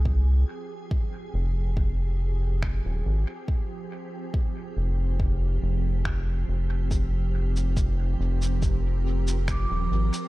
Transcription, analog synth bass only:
\new Staff \with { instrumentName = "Analog synth bass" } { \clef bass \time 4/4 \key f \dorian \tempo 4 = 70 c,8 r4 f,,4.~ f,,16 ees,,16 aes,,16 r16 | r4. f,,4 f,,4 f,,8~ | f,,4. f,,4.~ f,,16 ees,,16 aes,,16 r16 | }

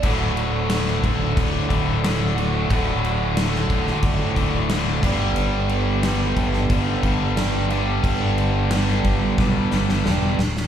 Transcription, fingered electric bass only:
\new Staff \with { instrumentName = "Fingered electric bass" } { \clef bass \time 4/4 \key d \major \tempo 4 = 90 d,,4. d,,8 d,,16 r16 d,,4. | d,,4. d,,16 r16 fis,,16 r16 d,,4 g,,8 | g,,4. g,,8 g,,16 r16 g,,4. | g,,4. g,,16 r16 b,,16 r16 g,,8 e,,8 d,,8 | }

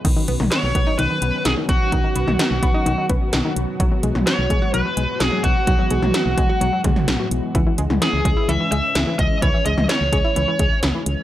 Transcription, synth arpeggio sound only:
\new Staff \with { instrumentName = "Synth arpeggio sound" } { \clef bass \time 4/4 \key b \major \tempo 4 = 128 dis16 dis16 b16 dis16 dis16 r16 b16 dis'16 dis16 dis16 b16 r16 dis16 dis16 r8 | dis16 dis16 b16 dis16 dis16 r16 b16 dis'16 dis16 dis16 b16 r16 dis16 dis16 r8 | fis16 fis16 gis16 fis16 fis16 r16 gis16 fis'16 fis16 fis16 gis16 r16 fis16 fis16 r8 | fis16 fis16 gis16 fis16 fis16 r16 gis16 fis'16 fis16 fis16 gis16 r16 fis16 fis16 r8 |
e16 e16 gis16 e16 e16 r16 gis16 e'16 e16 e16 gis16 r16 e16 e16 r8 | e16 e16 gis16 e16 e16 r16 gis16 e'16 e16 e16 gis16 r16 e16 e16 r8 | }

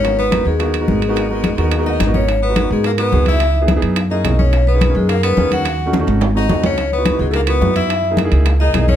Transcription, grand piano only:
\new Staff \with { instrumentName = "Grand piano" } { \time 4/4 \key gis \minor \tempo 4 = 214 << { r1 | r2 \tuplet 3/2 { r8. ais''16 fis''8 } r8 cis''8 | r1 | r1 |
r1 | r1 | r1 | r1 | } \\ { <b dis' fis' ais'>8. r16 <b dis' fis' ais'>8. r16 <b dis' fis' ais'>8 r16 <b dis' fis' ais'>8. r16 <b dis' fis' ais'>16~ | <b dis' fis' ais'>16 r16 <b dis' fis' ais'>8. r16 <b dis' fis' ais'>8 r16 <b dis' fis' ais'>8. r16 <b dis' fis' ais'>8 r16 | r8. <b dis' fis' ais'>16 r16 <b dis' fis' ais'>8. r8 <b dis' fis' ais'>16 r16 <b dis' fis' gis'>4 | r8. <b dis' e' gis'>16 r16 <b dis' e' gis'>8. r8 <ais cis' e' gis'>16 r16 <ais cis' e' gis'>4 |
r8. <ais cis' dis' gis'>16 r16 <ais cis' dis' gis'>8. r8 <ais cis' dis' gis'>16 r16 <ais cis' dis' gis'>4 | r8. <a cis' dis' fis'>16 r16 <a cis' dis' fis'>8. r8 <a bis dis' fis'>16 r16 <a bis dis' fis'>4 | r8. <b dis' e' fis'>16 r16 <b dis' e' fis'>8. r8 <b dis' e' fis'>16 r16 <b dis' e' fis'>4 | r8. <ais dis' e' gis'>16 r16 <ais dis' e' gis'>8. r8 <ais dis' e' gis'>16 r16 <ais dis' e' gis'>4 | } >> }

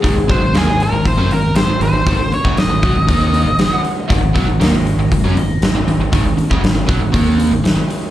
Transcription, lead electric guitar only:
\new Staff \with { instrumentName = "Lead electric guitar" } { \time 4/4 \key aes \mixolydian \tempo 4 = 118 r8 c''8 aes'8 bes'8 c''8 bes'8 c''8 c''8~ | c''8 des''8 ees''2~ ees''8 r8 | r1 | r1 | }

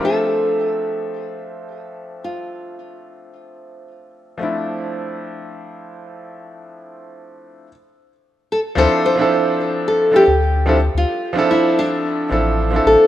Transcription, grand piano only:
\new Staff \with { instrumentName = "Grand piano" } { \time 4/4 \key d \minor \tempo 4 = 110 <f a c' d' e''>1~ | <f a c' d' e''>1 | <f a c' d' e'>1~ | <f a c' d' e'>2 r2 |
<f c' d' e' a'>8. <f c' d' e' a'>4.~ <f c' d' e' a'>16 <f c' d' e' a'>16 r8. <f c' d' e' a'>16 r16 | r8. <f c' d' e' a'>4.~ <f c' d' e' a'>16 <f c' d' e' a'>8. <f c' d' e' a'>8. | }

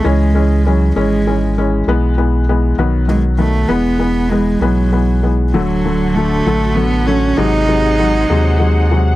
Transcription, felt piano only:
\new Staff \with { instrumentName = "Felt piano" } { \clef bass \time 6/8 \key e \major \tempo 4. = 66 <e gis cis'>8 <e gis cis'>8 <e gis cis'>8 <e gis cis'>8 <e gis cis'>8 <e gis cis'>8 | <e gis b>8 <e gis b>8 <e gis b>8 <dis fis b>8 <dis fis b>8 <dis fis b>8 | <e gis b>8 <e gis b>8 <e gis b>8 <e gis b>8 <e gis b>8 <e gis b>8 | <d fis a>8 <d fis a>8 <d fis a>8 <d fis a>8 <d fis a>8 <d fis a>8 |
<bis, fis gis>8 <bis, fis gis>8 <bis, fis gis>8 <bis, fis gis>8 <bis, fis gis>8 <bis, fis gis>8 | }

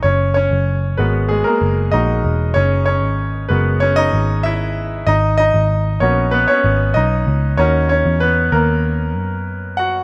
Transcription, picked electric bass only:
\new Staff \with { instrumentName = "Picked electric bass" } { \clef bass \time 4/4 \key fis \mixolydian \tempo 4 = 95 fis,,8. fis,,8. gis,,8. r16 fis,,8 ais,,8 e,,8 | fis,,8. gis,,8. fis,,4 gis,,4. | gis,,8. gis,,8. ais,,8. r16 gis,,8 b,,8 cis,8 | dis,8. e,8. dis,4 fis,4. | }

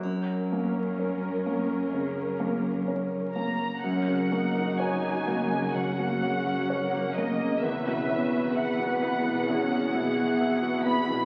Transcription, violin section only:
\new Staff \with { instrumentName = "Violin section" } { \time 4/4 \key fis \mixolydian \tempo 4 = 64 r2. r8 ais''8 | fis''4 gis''4 fis''4. dis''8 | e''4 fis''8 fis''2 b''8 | }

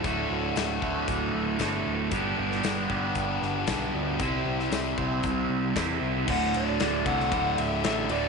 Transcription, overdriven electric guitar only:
\new Staff \with { instrumentName = "Overdriven electric guitar" } { \clef bass \time 4/4 \key d \mixolydian \tempo 4 = 115 <d, a, d a fis'>4. <d, a, d a fis'>4. <d, a, d a fis'>4 | <g, d g b d' g'>4. <g, d g b d' g'>4. <g, d g b d' g'>4 | <c g c' e' g' c''>4. <c g c' e' g' c''>4. <c g c' e' g' c''>4 | <d, a, d>4 <d, a, d>8 <d, a, d>8 <d, a, d>4 <d, a, d>8 <d, a, d>8 | }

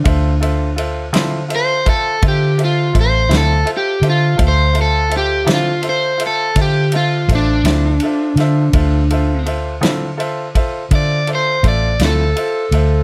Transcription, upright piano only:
\new Staff \with { instrumentName = "Upright piano" } { \time 12/8 \key d \minor \tempo 4. = 55 <f' a' c'' e''>8 <f' a' c'' e''>8 <f' a' c'' e''>8 <f' a' c'' e''>8 <f' a' c'' e''>8 <f' a' c'' e''>8 <f' a' c'' e''>8 <f' a' c'' e''>8 <f' a' c'' e''>8 <f' a' c'' e''>8 <f' a' c'' e''>8 <f' a' c'' e''>8 | <f' a' c'' e''>8 <f' a' c'' e''>8 <f' a' c'' e''>8 <f' a' c'' e''>8 <f' a' c'' e''>8 <f' a' c'' e''>8 <f' a' c'' e''>8 <f' a' c'' e''>8 <f' a' c'' e''>8 <f' a' c'' e''>8 <f' a' c'' e''>8 <f' a' c'' e''>8 | <f' a' c'' e''>8 <f' a' c'' e''>8 <f' a' c'' e''>8 <f' a' c'' e''>8 <f' a' c'' e''>8 <f' a' c'' e''>8 <f' a' c'' e''>8 <f' a' c'' e''>8 <f' a' c'' e''>8 <f' a' c'' e''>8 <f' a' c'' e''>8 <f' a' c'' e''>8 | }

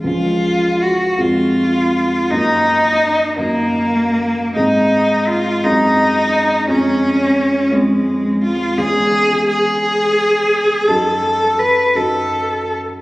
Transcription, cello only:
\new Staff \with { instrumentName = "Cello" } { \time 6/8 \key des \major \tempo 4. = 56 f'4 ges'8 f'4. | ees'4. bes4. | ees'4 f'8 ees'4. | des'4. aes4 f'8 |
\key cis \minor gis'4 gis'2 | a'4 b'8 a'4 r8 | }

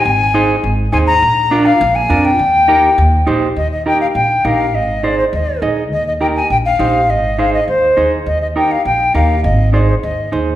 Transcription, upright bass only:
\new Staff \with { instrumentName = "Upright bass" } { \clef bass \time 4/4 \key ees \major \tempo 4 = 204 aes,,2 aes,,4 ees,4 | bes,,2 bes,,4 f,4 | ees,2 ees,4 bes,,4 | ees,2 bes,,4 bes,,4 |
aes,,2 ees,4 bes,,4 | ees,2 bes,,4 bes,,4 | aes,,2 ees,4 ees,4 | ees,2 bes,,4 ees,4 |
aes,,2 ees,4 ees,4 | }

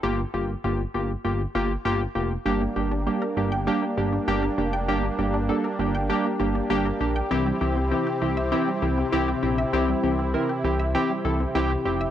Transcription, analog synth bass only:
\new Staff \with { instrumentName = "Analog synth bass" } { \clef bass \time 4/4 \key g \dorian \tempo 4 = 99 g,,8 g,,8 g,,8 g,,8 g,,8 g,,8 g,,8 f,,8 | g,,8 g,,8. r16 g,,8. r16 g,,8 g,,8 f,,8 | g,,8 g,,8. r16 g,,8. r16 g,,8 g,,8 bes,,8 | c,8 c,8. r16 c,8. r16 c,8 c,8 bes,,8 |
c,8 c,8. r16 c,8. r16 c,8 c,8 f,,8 | }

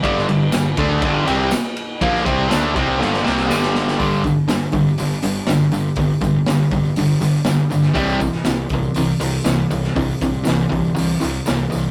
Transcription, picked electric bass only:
\new Staff \with { instrumentName = "Picked electric bass" } { \clef bass \time 4/4 \key c \major \tempo 4 = 121 g,,8 g,,8 g,,8 d,8 g,,8 c,8 r4 | bes,,8 c,8 d,8 c,8 g,,8 c,8 g,,4 | g,,4 g,,8 g,,8 g,,8 g,,8 g,,8 g,,8 | g,,8 g,,8 g,,8 g,,8 g,,8 g,,8 g,,8 g,,8 |
c,4 c,8 c,8 c,8 c,8 c,8 c,8 | c,8 c,8 c,8 c,8 c,8 c,8 c,8 c,8 | }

